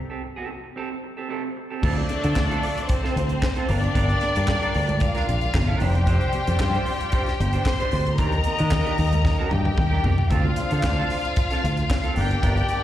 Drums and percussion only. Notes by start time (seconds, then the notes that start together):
1.83 kick, crash, muted conga
2.09 closed hi-hat, muted conga
2.24 closed hi-hat
2.36 kick, snare, clap, high conga
2.51 closed hi-hat
2.63 open hi-hat
2.78 closed hi-hat
2.89 kick, closed hi-hat
3.04 snare
3.17 closed hi-hat, muted conga
3.29 closed hi-hat
3.42 kick, snare, clap, high conga
3.56 closed hi-hat
3.69 open hi-hat, high conga
3.84 closed hi-hat
3.95 kick, closed hi-hat, muted conga
4.09 closed hi-hat
4.21 closed hi-hat, muted conga
4.36 closed hi-hat
4.48 kick, snare, clap, high conga
4.63 closed hi-hat
4.74 open hi-hat
4.88 closed hi-hat, low conga
5.00 kick, closed hi-hat
5.15 snare, closed hi-hat
5.29 closed hi-hat, muted conga
5.41 closed hi-hat
5.54 kick, snare, clap, high conga
5.80 open hi-hat, high conga
5.95 closed hi-hat
6.07 kick, closed hi-hat, muted conga
6.21 closed hi-hat
6.33 closed hi-hat, muted conga
6.47 closed hi-hat
6.60 kick, snare, clap, high conga
6.74 closed hi-hat
6.86 open hi-hat
7.01 closed hi-hat
7.12 kick, closed hi-hat
7.26 snare, closed hi-hat
7.40 closed hi-hat, muted conga
7.53 closed hi-hat
7.66 kick, snare, clap, high conga
7.80 closed hi-hat
7.92 open hi-hat, high conga
8.07 closed hi-hat
8.18 kick, closed hi-hat, muted conga
8.32 closed hi-hat
8.44 closed hi-hat, muted conga
8.59 closed hi-hat
8.71 kick, snare, clap, high conga
8.86 closed hi-hat
8.98 open hi-hat
9.13 closed hi-hat, low conga
9.25 kick, snare
9.51 high tom, muted conga
9.65 high tom
9.77 kick, mid tom, high conga
10.04 floor tom, high conga
10.18 floor tom
10.31 kick, closed hi-hat, muted conga
10.56 closed hi-hat, muted conga
10.71 closed hi-hat
10.83 kick, snare, clap, high conga
11.10 open hi-hat
11.25 closed hi-hat
11.36 kick, closed hi-hat
11.51 snare, closed hi-hat
11.65 closed hi-hat, muted conga
11.77 closed hi-hat
11.90 kick, snare, clap, high conga
12.04 closed hi-hat
12.16 open hi-hat, high conga
12.31 closed hi-hat
12.43 kick, closed hi-hat
12.57 closed hi-hat
12.69 closed hi-hat, muted conga